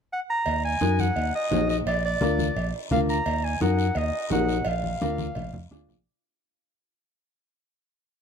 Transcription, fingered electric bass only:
0.46 0.74 D#2 medium
0.81 1.09 F#2 medium
1.16 1.30 D#2 loud
1.51 1.79 A#1 medium
1.86 2.14 A#1 medium
2.21 2.49 D2 medium
2.56 2.70 A#1 loud
2.91 3.19 D2 medium
3.26 3.54 D#2 medium
3.60 3.89 F#2 medium
3.96 4.10 D#2 loud
4.31 4.59 A#1 medium
4.66 4.94 A#1 loud
5.01 5.29 D2 medium
5.36 5.50 A#1 loud
5.54 5.69 F2 medium
5.71 5.86 D2 medium
5.88 6.04 A#1 medium

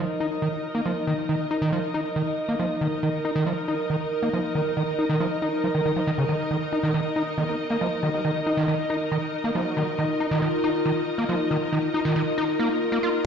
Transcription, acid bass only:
0.20 0.27 D#4 medium
0.42 0.49 D#3 medium
0.75 0.81 A#3 medium
0.86 0.92 F3 medium
1.07 1.14 D#3 medium
1.29 1.36 D#3 medium
1.51 1.57 D#4 medium
1.62 1.71 D#3 loud
1.73 1.79 F3 medium
1.94 2.01 D#4 medium
2.16 2.23 D#3 medium
2.49 2.55 A#3 medium
2.59 2.66 F3 medium
2.81 2.88 D#3 medium
3.03 3.09 D#3 medium
3.25 3.31 D#4 medium
3.36 3.45 D#3 loud
3.46 3.53 F3 medium
3.68 3.75 D#4 medium
3.90 3.96 D#3 medium
4.23 4.29 A#3 medium
4.33 4.40 F3 medium
4.55 4.62 D#3 medium
4.77 4.83 D#3 medium
4.99 5.05 D#4 medium
5.09 5.19 D#3 loud
5.20 5.27 F3 medium
5.42 5.49 D#4 medium
5.64 5.68 F3 medium
5.75 5.81 D#3 medium
5.86 5.92 D#3 medium
5.96 6.00 F3 medium
6.07 6.11 D#3 loud
6.18 6.25 C#3 medium
6.29 6.36 D#3 medium
6.51 6.57 D#3 medium
6.73 6.79 D#4 medium
6.83 6.93 D#3 loud
6.94 7.01 D#3 medium
7.16 7.22 D#4 medium
7.38 7.44 D#3 medium
7.70 7.77 A#3 medium
7.81 7.88 F3 medium
8.03 8.09 D#3 medium
8.25 8.31 D#3 medium
8.46 8.53 D#4 medium
8.57 8.67 D#3 loud
8.68 8.75 D#3 medium
8.90 8.96 D#4 medium
9.12 9.18 D#3 medium
9.44 9.51 A#3 medium
9.55 9.62 F3 medium
9.77 9.83 D#3 medium
9.99 10.05 D#3 medium
10.20 10.27 D#4 medium
10.31 10.41 D#3 loud
10.42 10.49 D#3 medium
10.64 10.70 D#4 medium
10.86 10.92 D#3 medium
11.18 11.25 A#3 medium
11.29 11.36 F3 medium
11.51 11.57 D#3 medium
11.72 11.79 D#3 medium
11.94 12.01 D#4 medium
12.05 12.15 D#3 loud
12.16 12.22 D#3 medium
12.38 12.44 D#4 medium
12.59 12.69 A#3 medium
12.92 12.99 A#3 medium
13.03 13.09 F4 medium

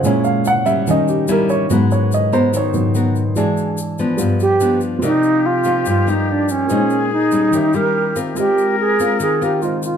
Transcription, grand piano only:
0.03 0.31 A#2 soft
0.03 0.31 G#3 soft
0.03 0.31 C#4 soft
0.03 0.25 C#5 medium
0.24 0.45 F5 medium
0.47 0.67 F#5 medium
0.66 0.86 E5 medium
0.87 1.66 D#3 soft
0.87 1.66 G3 soft
0.87 1.67 C#4 soft
0.87 1.09 D#5 medium
1.09 1.29 G4 medium
1.31 1.50 A#4 medium
1.50 1.70 C#5 medium
1.70 2.72 G#2 soft
1.70 2.72 F#3 soft
1.70 2.72 B3 soft
1.70 1.92 B4 medium
1.92 2.11 C#5 medium
2.14 2.33 D#5 medium
2.33 2.53 C5 medium
2.57 2.94 C#5 medium
2.73 2.92 G#2 soft
2.73 2.92 F#3 soft
2.73 2.92 B3 soft
3.35 4.15 E3 soft
3.35 4.15 G#3 soft
3.35 4.15 D4 medium
4.17 4.46 G3 soft
4.17 4.46 B3 soft
4.17 4.46 F4 medium
4.99 6.64 C4 soft
4.99 6.64 F4 soft
4.99 6.65 G4 soft
4.99 6.66 A#4 soft
5.04 6.66 D5 soft
5.04 6.67 D#5 soft
6.66 7.49 A#3 medium
6.66 7.50 F4 soft
6.66 7.51 G#4 soft
6.66 7.51 C5 soft
6.71 7.52 C#5 soft
6.71 7.52 D#5 medium
7.51 8.33 D#3 soft
7.51 8.34 G4 soft
7.51 8.35 A#4 soft
7.55 8.36 C#5 soft
7.55 8.36 E5 medium
8.34 9.58 G#3 soft
8.34 9.59 F4 soft
8.34 9.59 A#4 soft
8.38 9.60 C5 soft
8.38 9.61 D#5 soft
9.62 9.97 G#3 soft
9.62 9.97 F4 soft
9.62 9.97 A#4 soft
9.62 9.97 C5 soft
9.62 9.97 D#5 soft

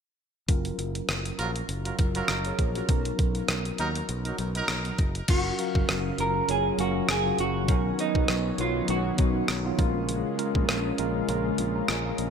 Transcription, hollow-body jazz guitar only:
5.30 6.20 F#4 medium
6.20 6.50 A#4 medium
6.51 6.80 G#4 medium
6.80 7.10 F#4 medium
7.11 7.38 G#4 medium
7.40 8.01 F#4 medium
8.00 8.61 D#4 medium
8.61 8.90 F4 medium
8.90 9.75 F#4 medium

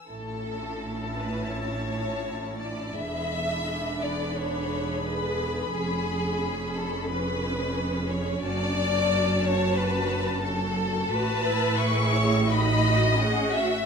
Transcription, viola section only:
0.11 2.96 C#4 medium
0.11 2.95 E4 medium
2.98 5.69 D4 medium
2.98 8.41 G#4 medium
5.73 11.09 C#4 medium
8.45 11.10 F#4 medium
11.12 11.44 F#4 medium
11.46 12.47 E4 medium
11.80 12.49 G#4 medium
12.49 13.18 D#4 medium
12.49 12.82 F#4 medium
12.83 13.18 F#4 medium
13.17 13.86 C#4 medium
13.17 13.52 G#4 medium
13.52 13.86 F#4 medium

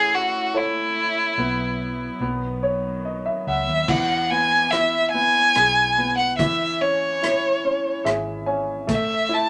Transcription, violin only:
0.00 0.17 G#4 loud
0.15 0.59 F#4 medium
0.57 2.22 E4 medium
3.49 3.91 E5 medium
3.89 4.32 F#5 medium
4.31 4.73 G#5 medium
4.71 5.11 E5 medium
5.11 6.13 G#5 loud
6.18 6.37 F#5 medium
6.38 6.83 E5 medium
6.81 8.05 C#5 medium
8.92 9.35 E5 medium
9.34 9.49 A5 medium

